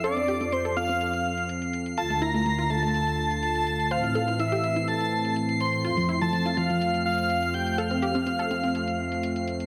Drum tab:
HH |xxxxxxxxxx-xxxxx|xxxxxxxxxx-xxxxx|xxxxxxxxxx-xxxxx|xxxxxxxxxx-xxxxx|

HH |xxxxxxxxxx-xxxxx|